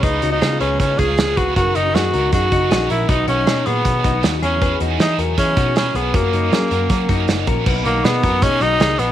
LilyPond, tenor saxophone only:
\new Staff \with { instrumentName = "Tenor saxophone" } { \time 4/4 \key b \major \tempo 4 = 157 dis'8. dis'8. cis'8 cis'8 gis'4 fis'8 | fis'8 dis'8 fis'4 fis'4. e'8 | dis'8 cis'4 b4. r8 cis'8~ | cis'8 r8 dis'8 r8 cis'4 cis'8 b8 |
ais2. r4 | r8 ais8 b4 cis'8 dis'4 b8 | }